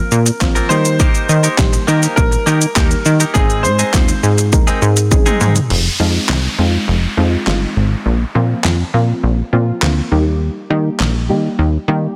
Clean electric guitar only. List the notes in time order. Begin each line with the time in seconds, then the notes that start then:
0.26 muted clean electric guitar stroke
0.41 muted clean electric guitar stroke
0.55 A#3 C4 F4 A#4
0.70 A#3 G4 A#4
0.85 muted clean electric guitar stroke
0.99 A#3 D#4 G4 A#4
1.29 muted clean electric guitar stroke
1.43 A#3 D#4 G4 A#4
1.73 muted clean electric guitar stroke
1.87 A#3 D#4 G4 A#4
2.02 A#3 D#4 G4 A#4
2.32 muted clean electric guitar stroke
2.46 A#3 D#4 G4 A#4
2.61 muted clean electric guitar stroke
2.76 A#3 D#4 G4 A#4
2.91 muted clean electric guitar stroke
3.05 muted clean electric guitar stroke
3.20 A#3 D#4 G4 A#4
3.35 G#3 C4 D#4 G#4
3.64 muted clean electric guitar stroke
3.79 G#3 C4 D#4 G#4
4.08 muted clean electric guitar stroke
4.38 muted clean electric guitar stroke
4.53 muted clean electric guitar stroke
4.67 G#3 C4 D#4 G#4
4.97 muted clean electric guitar stroke
5.11 muted clean electric guitar stroke
5.26 G#3 C4 D#4 G#4
5.41 G#3 C4 D#4 G#4
5.55 muted clean electric guitar stroke